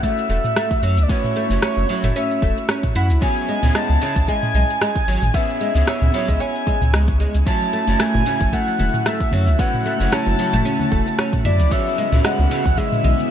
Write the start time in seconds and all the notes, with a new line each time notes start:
Already playing: A3 C#4 E4 F#4 C#5
0.03 A3 E5, kick, cabasa
0.18 cabasa
0.29 E1 A3, open hi-hat
0.44 mid tom, cabasa
0.56 A3, cross-stick, open hi-hat, cabasa
0.71 kick, open hi-hat, cabasa
0.82 F#2 F#3, open hi-hat
0.97 C#2, open hi-hat, cabasa
1.03 D5
1.08 A3 B3 C#4 E4 F#4 C#5, kick, open hi-hat, cabasa
1.24 mid tom, cabasa
1.36 A3, open hi-hat
1.49 F#1 A3 C#4 E4 F#4 C#5, open hi-hat, cabasa
1.62 C#4 C#5, cross-stick, open hi-hat, cabasa
1.77 F#1, cabasa
1.87 F#3 A3 C#4 E4 F#4 C#5, open hi-hat
2.03 F#1 A3, mid tom, open hi-hat, cabasa
2.16 C#4 E5, cabasa
2.31 cabasa
2.42 E1 A3, kick, open hi-hat
2.57 cabasa
2.69 C#4, cross-stick, open hi-hat, cabasa
2.83 kick, mid tom, open hi-hat, cabasa
2.95 F#2 E4 F#5, open hi-hat
3.10 C#2, open hi-hat, cabasa
3.21 F#3 B3 C#4 E4 G#4 C#5 G#5, kick, open hi-hat, cabasa
3.37 cabasa
3.49 G#3, open hi-hat
3.62 C#2 B3 C#4 E4 G#4 C#5, mid tom, open hi-hat, cabasa
3.75 G#3 A5, cross-stick, open hi-hat, cabasa
3.89 C#2, cabasa
4.00 C#3 B3 C#4 E4 G#4, open hi-hat
4.04 C#5
4.16 C#2, kick, open hi-hat, cabasa
4.28 G#3 G#5, kick, cabasa
4.43 mid tom, cabasa
4.54 B1 G#3, open hi-hat
4.70 cabasa
4.81 G#3, cross-stick, open hi-hat, cabasa
4.96 kick, open hi-hat, cabasa
5.07 G#1 F#3, open hi-hat
5.22 G#1, mid tom, open hi-hat, cabasa
5.34 B3 C#4 E4 G#4 C#5 E5, kick, open hi-hat, cabasa
5.50 cabasa
5.61 G#3, open hi-hat
5.75 C#2 B3 C#4 E4 G#4 C#5, open hi-hat, cabasa
5.87 C#4 E5, cross-stick, open hi-hat, cabasa
6.02 C#2, mid tom, cabasa
6.12 F#3 B3 C#4 E4 G#4, open hi-hat
6.16 C#5
6.28 C#2 G#3, kick, open hi-hat, cabasa
6.40 C#4 G#5, open hi-hat, cabasa
6.55 cabasa
6.67 G#3, kick, open hi-hat
6.81 C#2, mid tom, cabasa
6.94 G#3, cross-stick, open hi-hat, cabasa
7.08 kick, open hi-hat, cabasa
7.20 G#3, open hi-hat
7.35 C#2, open hi-hat, cabasa
7.46 C#3 F#3 A3 C#4 E4 F#4 C#5 E5 A5, kick, open hi-hat, cabasa
7.61 high conga, cabasa
7.73 A3, open hi-hat
7.87 F#1 A3 C#4 E4 F#4 C#5, open hi-hat, cabasa
8.00 A3 G#5, cross-stick, open hi-hat, cabasa
8.14 F#1, mid tom, high bongo, cabasa
8.24 C#3 A3 C#4 E4 F#4, open hi-hat
8.28 C#5
8.41 F#1, kick, open hi-hat, high conga, cabasa
8.46 G#5
8.53 A3 F#5, kick, cabasa
8.68 high conga, cabasa
8.79 E1 A3, open hi-hat, low conga
8.94 mid tom, cabasa
9.06 A3 E5, cross-stick, open hi-hat, high bongo, cabasa
9.20 kick, open hi-hat, cabasa
9.31 F#2 F#3, open hi-hat, low conga
9.47 C#2, open hi-hat, high bongo, cabasa
9.58 A3 B3 C#4 E4 F#4 C#5 F#5, kick, open hi-hat, cabasa
9.73 mid tom, high conga, cabasa
9.86 A3, open hi-hat
9.99 F#1 A3 C#4 E4 F#4 C#5, open hi-hat, cabasa
10.12 C#4 A5, cross-stick, open hi-hat, cabasa
10.26 F#1, high bongo, cabasa
10.36 F#3 A3 C#4 E4 F#4, open hi-hat
10.41 C#5
10.53 F#1 A3, mid tom, open hi-hat, high conga, cabasa
10.65 C#4, cabasa
10.80 low conga, cabasa
10.92 E1 A3, kick, open hi-hat
11.06 high bongo, cabasa
11.19 C#4, cross-stick, open hi-hat, cabasa
11.33 kick, mid tom, open hi-hat, cabasa
11.45 F#2 E4 D5, open hi-hat, low conga
11.59 C#2, open hi-hat, high conga, cabasa
11.70 F#3 G#3 B3 C#4 E4 G#4 C#5 E5, kick, open hi-hat, cabasa
11.86 high conga, cabasa
11.98 G#3, open hi-hat
12.12 C#2 B3 C#4 E4 G#4 C#5, mid tom, open hi-hat, cabasa
12.24 G#3 F#5, cross-stick, open hi-hat, cabasa
12.39 C#2, high bongo, cabasa
12.49 C#3 B3 C#4 E4 G#4 C#5, open hi-hat
12.64 C#2, kick, open hi-hat, high conga, cabasa
12.78 G#3 E5, kick, cabasa
12.92 mid tom, high conga, cabasa
13.04 B1 G#3, open hi-hat, low conga
13.20 cabasa